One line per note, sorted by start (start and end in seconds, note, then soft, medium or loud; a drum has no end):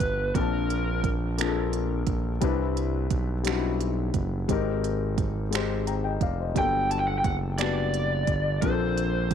0.00 0.32 G1 medium
0.00 0.36 G3 medium
0.00 0.36 B3 medium
0.00 0.36 D4 medium
0.00 0.36 F#4 medium
0.00 0.36 A4 medium
0.00 0.35 B4 medium
0.00 kick medium
0.00 closed hi-hat soft
0.35 2.04 A#1 medium
0.35 1.27 A#3 medium
0.35 1.27 C4 medium
0.35 1.28 D4 medium
0.35 1.28 F4 medium
0.35 1.09 A#4 medium
0.35 kick medium
0.35 closed hi-hat medium
0.39 1.29 A5 medium
0.70 closed hi-hat soft
1.04 kick medium
1.04 closed hi-hat soft
1.38 2.30 A#3 medium
1.38 2.30 C4 medium
1.38 2.31 D4 medium
1.38 2.31 F4 medium
1.38 1.46 G#4 medium
1.38 finger snap medium
1.38 closed hi-hat medium
1.48 2.35 A4 medium
1.73 closed hi-hat soft
2.07 2.39 A#1 medium
2.07 kick medium
2.07 closed hi-hat soft
2.41 3.07 C2 medium
2.41 3.33 G3 medium
2.41 3.34 C4 medium
2.41 3.34 D4 medium
2.41 3.34 E4 medium
2.41 3.35 B4 medium
2.41 kick medium
2.41 closed hi-hat medium
2.77 closed hi-hat soft
3.10 4.11 B1 medium
3.10 kick medium
3.10 closed hi-hat soft
3.43 4.36 G3 medium
3.43 4.37 C4 medium
3.43 4.37 D4 medium
3.43 3.52 D#4 soft
3.43 finger snap medium
3.43 closed hi-hat medium
3.48 4.38 F#4 medium
3.54 4.41 E4 medium
3.81 closed hi-hat soft
4.14 4.46 F#1 medium
4.14 kick medium
4.14 closed hi-hat soft
4.48 6.17 G#1 medium
4.48 5.40 G#3 medium
4.48 5.41 C4 medium
4.48 5.41 D#4 medium
4.48 5.41 G4 medium
4.48 kick medium
4.48 closed hi-hat medium
4.52 5.42 A#4 medium
4.84 closed hi-hat soft
5.18 kick medium
5.18 closed hi-hat soft
5.51 6.43 G#3 medium
5.51 6.44 C4 medium
5.51 6.44 D#4 medium
5.51 6.45 G4 medium
5.51 closed hi-hat medium
5.55 5.88 C5 medium
5.55 finger snap medium
5.87 6.03 G5 soft
5.87 6.03 A#5 medium
5.87 closed hi-hat soft
6.04 6.21 D#5 soft
6.04 6.20 G5 medium
6.21 6.52 F1 medium
6.21 6.38 D5 soft
6.21 6.38 F5 medium
6.21 kick medium
6.21 closed hi-hat soft
6.39 6.72 C5 soft
6.39 6.71 D#5 medium
6.54 7.21 G1 medium
6.54 7.48 F#3 medium
6.54 7.47 G3 medium
6.54 6.62 A#3 soft
6.54 7.48 D4 medium
6.54 kick medium
6.54 closed hi-hat medium
6.58 7.51 B3 medium
6.58 7.49 A4 medium
6.58 6.90 G5 medium
6.91 6.98 A5 medium
6.91 closed hi-hat soft
6.99 7.07 G5 medium
7.07 7.16 F#5 medium
7.18 7.25 G5 medium
7.24 8.24 F#1 medium
7.24 7.34 F#5 medium
7.24 kick medium
7.24 closed hi-hat soft
7.58 8.50 G3 medium
7.58 8.51 B3 medium
7.58 8.51 D4 medium
7.58 8.52 F#4 medium
7.58 8.52 B4 medium
7.58 8.62 D5 medium
7.58 finger snap medium
7.58 closed hi-hat medium
7.94 closed hi-hat soft
8.27 8.59 G1 medium
8.27 kick medium
8.27 closed hi-hat soft
8.62 9.34 A#1 medium
8.62 9.34 A#3 medium
8.62 9.34 C4 medium
8.62 9.34 D4 medium
8.62 9.34 F4 medium
8.62 8.70 G#4 medium
8.62 9.34 C5 medium
8.62 kick medium
8.62 closed hi-hat medium
8.72 9.34 A4 medium
8.98 closed hi-hat soft
9.31 closed hi-hat soft